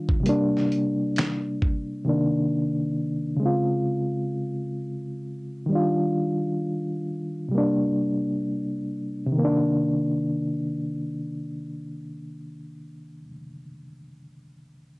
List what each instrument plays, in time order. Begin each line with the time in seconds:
Already playing: reed electric piano D#3 G3 D4 F4
0.09 kick
0.20 reed electric piano C3 G3
0.26 reed electric piano A#3 D4, closed hi-hat
0.57 snare
0.72 closed hi-hat
1.16 finger snap, snare, closed hi-hat
1.62 kick
2.05 reed electric piano C3 D#3 A#3
2.09 reed electric piano D4
3.37 reed electric piano C#3 G#3
3.43 reed electric piano C4 F4
5.66 reed electric piano D#3 G3
5.72 reed electric piano D4 F4
7.48 reed electric piano C3 G3
7.55 reed electric piano A#3 D4
9.26 reed electric piano C3
9.32 reed electric piano D#3
9.38 reed electric piano A#3
9.44 reed electric piano D4